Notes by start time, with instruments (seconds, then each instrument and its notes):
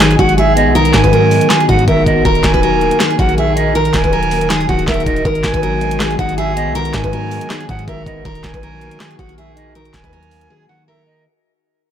Already playing: 808-style bass G#1, clean electric guitar F#3 G#3, ambient pad G#3 B3 D#4 F#4, flute G#5
0.00 clean electric guitar D#3, steel-string acoustic guitar G#4, snare, closed hi-hat
0.11 closed hi-hat
0.19 808-style bass G#1, clean electric guitar D#3, steel-string acoustic guitar F#4, flute F#5, kick, closed hi-hat
0.29 closed hi-hat
0.38 steel-string acoustic guitar G#4, flute E5, closed hi-hat
0.56 clean electric guitar B3, flute D#5, closed hi-hat
0.66 808-style bass B1
0.75 clean electric guitar D#3, steel-string acoustic guitar A#4, closed hi-hat
0.85 closed hi-hat
0.93 808-style bass G#2, flute G#5, kick, snare, clap, closed hi-hat
1.04 steel-string acoustic guitar B4, kick, closed hi-hat
1.12 clean electric guitar F#3, steel-string acoustic guitar A#4, closed hi-hat
1.31 clean electric guitar G#3, open hi-hat
1.41 closed hi-hat
1.50 clean electric guitar D#3, steel-string acoustic guitar G#4, snare, clap, closed hi-hat
1.60 closed hi-hat
1.69 808-style bass G#2, clean electric guitar D#3, steel-string acoustic guitar F#4, flute F#5, kick, closed hi-hat
1.79 closed hi-hat
1.88 808-style bass G#1, steel-string acoustic guitar A#4, flute E5, kick, closed hi-hat
2.06 808-style bass G#1, clean electric guitar B3, flute D#5, kick, closed hi-hat
2.25 808-style bass D#1, clean electric guitar D#3, ambient pad D#3 A#4, steel-string acoustic guitar A#4, kick, closed hi-hat
2.35 closed hi-hat
2.44 808-style bass D#1, flute G#5, kick, snare, clap, closed hi-hat
2.54 steel-string acoustic guitar B4, kick, closed hi-hat
2.63 808-style bass E1, clean electric guitar F#3, steel-string acoustic guitar A#4, closed hi-hat
2.77 808-style bass D#1
2.81 clean electric guitar A#3, closed hi-hat
2.91 closed hi-hat
3.00 clean electric guitar D#3, steel-string acoustic guitar G#4, snare, clap, closed hi-hat
3.11 closed hi-hat
3.19 808-style bass A#1, clean electric guitar D#3, steel-string acoustic guitar F#4, flute F#5, kick, closed hi-hat
3.29 closed hi-hat
3.38 steel-string acoustic guitar G#4, flute E5, closed hi-hat
3.56 clean electric guitar D#4, flute D#5, closed hi-hat
3.75 clean electric guitar D#3, steel-string acoustic guitar A#4, closed hi-hat
3.85 closed hi-hat
3.94 808-style bass D#1, flute G#5, kick, snare, clap, closed hi-hat
4.04 steel-string acoustic guitar B4, kick, closed hi-hat
4.13 clean electric guitar F#3, steel-string acoustic guitar A#4, closed hi-hat
4.23 closed hi-hat
4.31 clean electric guitar A#3, open hi-hat
4.41 closed hi-hat
4.50 clean electric guitar D#3, steel-string acoustic guitar G#4, snare, clap, closed hi-hat
4.61 closed hi-hat
4.68 808-style bass C#1, clean electric guitar D#3, steel-string acoustic guitar F#4, flute F#5, kick, closed hi-hat
4.79 closed hi-hat
4.87 808-style bass D#1, steel-string acoustic guitar A#4, flute E5, kick, snare, clap, closed hi-hat
4.94 closed hi-hat
5.00 closed hi-hat
5.06 808-style bass D#1, clean electric guitar D#4, flute D#5, kick, closed hi-hat
5.16 closed hi-hat
5.25 808-style bass G#1, clean electric guitar D#3, ambient pad G#3 B3 F#4, steel-string acoustic guitar A#4, kick, closed hi-hat
5.35 closed hi-hat
5.44 808-style bass G#1, flute G#5, kick, snare, clap, closed hi-hat
5.54 steel-string acoustic guitar B4, kick, closed hi-hat
5.62 clean electric guitar F#3, steel-string acoustic guitar A#4, closed hi-hat
5.81 clean electric guitar G#3, closed hi-hat
5.91 closed hi-hat
6.00 clean electric guitar D#3, steel-string acoustic guitar G#4, snare, clap, closed hi-hat
6.11 closed hi-hat
6.19 808-style bass G#1, clean electric guitar D#3, steel-string acoustic guitar F#4, flute F#5, kick, closed hi-hat
6.29 closed hi-hat
6.38 steel-string acoustic guitar G#4, flute E5, closed hi-hat
6.56 clean electric guitar B3, flute D#5, closed hi-hat
6.66 808-style bass B1
6.75 clean electric guitar D#3, steel-string acoustic guitar A#4, closed hi-hat
6.85 closed hi-hat
6.93 808-style bass G#2, flute G#5, kick, snare, clap, closed hi-hat
7.04 steel-string acoustic guitar B4, kick, closed hi-hat
7.12 clean electric guitar F#3, steel-string acoustic guitar A#4, closed hi-hat
7.31 clean electric guitar G#3, open hi-hat
7.41 closed hi-hat
7.50 clean electric guitar D#3, steel-string acoustic guitar G#4, snare, clap, closed hi-hat
7.61 closed hi-hat
7.69 808-style bass G#2, clean electric guitar D#3, steel-string acoustic guitar F#4, flute F#5, kick, closed hi-hat
7.79 closed hi-hat
7.88 808-style bass G#1, steel-string acoustic guitar A#4, flute E5, kick, closed hi-hat
8.06 808-style bass G#1, clean electric guitar B3, flute D#5, kick, closed hi-hat
8.25 808-style bass D#1, clean electric guitar D#3, ambient pad D#3 D#4 F#4 A#4, steel-string acoustic guitar A#4, kick, closed hi-hat
8.35 closed hi-hat
8.44 808-style bass D#1, flute G#5, kick, snare, clap, closed hi-hat
8.54 808-style bass A#1, steel-string acoustic guitar B4, kick, closed hi-hat
8.63 clean electric guitar F#3, steel-string acoustic guitar A#4, closed hi-hat
8.81 clean electric guitar A#3, closed hi-hat
8.91 closed hi-hat
9.00 clean electric guitar D#3, steel-string acoustic guitar G#4, snare, clap, closed hi-hat
9.11 closed hi-hat
9.19 808-style bass A#1, clean electric guitar D#3, steel-string acoustic guitar F#4, flute F#5, kick, closed hi-hat
9.29 closed hi-hat
9.38 steel-string acoustic guitar G#4, flute E5, closed hi-hat
9.56 clean electric guitar D#4, flute D#5, closed hi-hat
9.75 clean electric guitar D#3, steel-string acoustic guitar A#4, closed hi-hat
9.85 closed hi-hat
9.94 808-style bass D#1, flute G#5, kick, snare, clap, closed hi-hat
10.04 808-style bass D#2, steel-string acoustic guitar B4, kick, closed hi-hat
10.13 clean electric guitar F#3, steel-string acoustic guitar A#4, closed hi-hat
10.23 closed hi-hat
10.31 clean electric guitar A#3, open hi-hat
10.41 closed hi-hat
10.50 clean electric guitar D#3, steel-string acoustic guitar G#4
10.68 clean electric guitar D#3, steel-string acoustic guitar F#4, flute F#5
10.88 steel-string acoustic guitar A#4, flute E5
11.06 clean electric guitar D#4, flute D#5